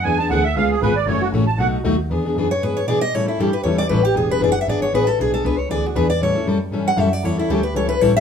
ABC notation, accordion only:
X:1
M:4/4
L:1/8
Q:"Swing" 1/4=234
K:Emix
V:1 name="Accordion"
g a f e ^e G B d | c F z a f z3 | z8 | z8 |
z8 | z8 | z8 | z8 |]